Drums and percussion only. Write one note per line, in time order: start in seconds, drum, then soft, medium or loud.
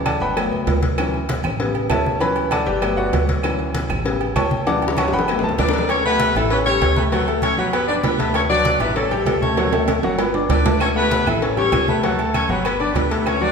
0.06 cowbell medium
0.06 high conga medium
0.06 low timbale medium
0.06 low agogo loud
0.06 claves medium
0.37 cowbell loud
0.37 high conga soft
0.37 low agogo loud
0.37 claves medium
0.52 high conga soft
0.67 cowbell medium
0.67 high conga medium
0.67 low timbale medium
0.67 low agogo medium
0.83 cowbell medium
0.83 high conga medium
0.98 cowbell loud
0.98 high conga soft
0.98 low agogo loud
0.98 claves medium
1.14 high conga soft
1.29 cowbell medium
1.29 high conga loud
1.29 low timbale medium
1.29 low agogo medium
1.44 high conga soft
1.44 low conga medium
1.44 low agogo loud
1.44 claves medium
1.60 cowbell loud
1.60 high conga soft
1.75 high conga soft
1.75 low agogo medium
1.90 cowbell medium
1.90 high conga medium
1.90 low timbale medium
1.90 low agogo loud
1.90 claves medium
2.06 high conga medium
2.20 cowbell loud
2.20 high conga soft
2.20 low agogo medium
2.36 high conga soft
2.36 low agogo medium
2.51 cowbell medium
2.51 high conga medium
2.51 low timbale medium
2.51 low agogo loud
2.51 claves medium
2.82 cowbell loud
2.82 high conga soft
2.82 low agogo loud
2.82 claves medium
2.98 high conga soft
3.13 cowbell medium
3.13 high conga medium
3.13 low timbale medium
3.13 low agogo medium
3.29 cowbell medium
3.29 high conga medium
3.43 cowbell loud
3.43 high conga soft
3.43 low agogo loud
3.43 claves medium
3.59 high conga soft
3.75 cowbell medium
3.75 high conga loud
3.75 low timbale medium
3.75 low agogo medium
3.90 high conga soft
3.90 low conga medium
3.90 low agogo loud
3.90 claves medium
4.05 cowbell loud
4.05 high conga soft
4.21 high conga soft
4.21 low agogo medium
4.36 cowbell medium
4.36 high conga medium
4.36 low timbale medium
4.36 low agogo loud
4.36 claves medium
4.51 high conga loud
4.67 cowbell loud
4.67 high bongo medium
4.67 high conga soft
4.67 low agogo medium
4.82 high conga soft
4.82 low agogo medium
4.88 high bongo loud
4.97 cowbell medium
4.97 low bongo medium
4.97 high conga medium
4.97 low timbale medium
4.97 low agogo loud
4.97 claves medium
5.08 high bongo loud
5.19 low bongo medium
5.28 cowbell loud
5.28 high conga soft
5.28 low agogo loud
5.28 claves medium
5.39 low bongo loud
5.43 high conga soft
5.49 low bongo medium
5.58 cowbell medium
5.58 low bongo medium
5.58 high conga medium
5.58 low timbale medium
5.58 low agogo medium
5.69 low bongo loud
5.74 cowbell medium
5.78 low bongo loud
5.89 cowbell loud
5.89 high conga soft
5.89 low agogo loud
6.05 high conga soft
6.20 cowbell medium
6.20 high conga loud
6.20 low timbale medium
6.20 low agogo medium
6.36 high conga soft
6.36 low conga medium
6.36 low agogo loud
6.50 cowbell loud
6.50 high conga soft
6.66 high conga soft
6.66 low agogo medium
6.81 cowbell medium
6.81 high conga medium
6.81 low timbale medium
6.81 low agogo loud
6.97 high conga medium
7.12 cowbell loud
7.12 high conga soft
7.12 low agogo medium
7.27 high conga soft
7.27 low agogo medium
7.42 cowbell medium
7.42 high conga medium
7.42 low timbale medium
7.42 low agogo loud
7.73 cowbell loud
7.73 high conga soft
7.73 low agogo loud
7.89 high conga soft
8.04 cowbell medium
8.04 high conga medium
8.04 low timbale medium
8.04 low agogo medium
8.19 cowbell medium
8.19 high conga medium
8.34 cowbell loud
8.34 high conga soft
8.34 low agogo loud
8.50 high conga soft
8.65 cowbell medium
8.65 high conga loud
8.65 low timbale medium
8.65 low agogo medium
8.80 high conga soft
8.80 low conga medium
8.80 low agogo loud
8.96 cowbell loud
8.96 high conga soft
9.11 high conga soft
9.11 low agogo loud
9.26 cowbell medium
9.26 high conga medium
9.26 low timbale medium
9.26 low agogo loud
9.42 high conga loud
9.57 cowbell loud
9.57 high conga soft
9.57 high timbale medium
9.57 low agogo medium
9.73 high conga soft
9.73 high timbale loud
9.73 low agogo medium
9.88 cowbell medium
9.88 high conga medium
9.88 high timbale medium
9.88 low agogo loud
10.03 high timbale medium
10.19 cowbell loud
10.19 high conga soft
10.19 low timbale medium
10.19 low agogo loud
10.34 high conga soft
10.34 low timbale medium
10.50 cowbell medium
10.50 high conga medium
10.50 low timbale loud
10.50 low agogo medium
10.66 cowbell medium
10.66 high conga medium
10.66 low timbale medium
10.80 cowbell loud
10.80 high conga soft
10.80 low agogo loud
10.80 claves medium
10.96 high conga soft
11.11 cowbell medium
11.11 high conga loud
11.11 low timbale medium
11.11 low agogo medium
11.27 high conga soft
11.27 low conga medium
11.27 low agogo loud
11.27 claves medium
11.42 cowbell loud
11.42 high conga soft
11.57 high conga soft
11.57 low agogo medium
11.72 cowbell medium
11.72 high conga medium
11.72 low timbale medium
11.72 low agogo loud
11.72 claves medium
11.88 high conga medium
12.03 cowbell loud
12.03 high conga soft
12.03 low agogo medium
12.19 high conga soft
12.19 low agogo medium
12.34 cowbell medium
12.34 high conga medium
12.34 low timbale medium
12.34 low agogo loud
12.34 claves medium
12.65 cowbell loud
12.65 high conga soft
12.65 low agogo loud
12.65 claves medium
12.80 high conga soft
12.95 cowbell medium
12.95 high conga medium
12.95 low timbale medium
12.95 low agogo medium
13.11 cowbell medium
13.26 cowbell loud
13.26 high conga soft
13.26 low agogo loud
13.26 claves medium
13.42 high conga soft